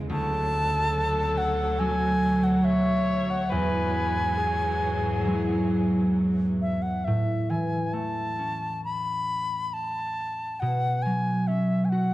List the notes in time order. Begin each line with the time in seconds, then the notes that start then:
Already playing: E2 C#3 G#3 B3 E4
0.10 D2 F#3 A4 A5
1.38 F#5
1.79 B2 F#3 C#4 D4 G#5
2.44 F#5
2.64 C#5 E5
3.30 F#5
3.49 E2 G#2 E3 F#3 B4 G#5
4.37 G#4
5.25 F#3 G#3 E4
6.61 E5
6.82 F#5
7.05 A2 E5
7.50 E3 G#5
7.93 A3 A5
8.39 C#4
8.84 B5
9.74 A5
10.60 B2 F#5
11.02 F#3 G#5
11.47 C#4 E5
11.85 G#5
11.89 F#4 F#5